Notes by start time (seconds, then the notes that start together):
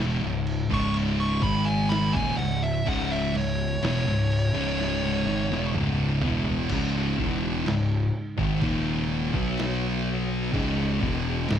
Already playing: E1 E2 B2 C#3 G#3 E5
0.00 snare
0.21 C#1 C#2 G#2
0.47 crash
0.70 C#1 C#2 G#2 C#3, kick
0.74 C#6
0.94 crash
1.20 C#6
1.42 G#1 G#2 D#3 G#3 B5, kick, crash
1.65 G#5
1.89 B5, snare, crash
2.13 D#1 D#2 A#2 G#5, kick
2.37 C#1 C#2 G#2 F#5, crash
2.63 E5
2.86 C#1 C#2 G#2 C#3 F#5, kick, crash
3.11 E5
3.34 C#1 C#2 G#2 C#5, crash
3.82 E1 E2 B2, snare, crash
3.86 C#5
4.05 C#1 C#2 G#2
4.32 crash
4.53 C#1 C#2 G#2 C#3
4.81 snare
5.03 high tom
5.25 G#1 G#2 D#3
5.50 E1 E2 B2, snare
5.74 C#1 C#2 G#2 C#3, mid tom
6.22 E1 E2 B2 E3, floor tom
6.45 floor tom
6.69 C#1 C#2 G#2 C#3 G#3 D#4, kick, crash
6.96 snare
7.18 E1 E2 B2 E3, kick
7.66 C#1 C#2 G#2, snare, crash
8.37 G#1 G#2 D#3, kick
8.62 D#1 D#2 A#2 D#3, kick, crash
9.33 B1 B2 F#3 B3 F#4 C#5, kick
9.58 snare, crash
10.53 C#1 C#2 G#2 C#3 C#4 G#4 D#5, kick, crash
10.80 snare
11.01 E1 E2 B2 E3, kick
11.48 C#1 C#2 G#2, snare, crash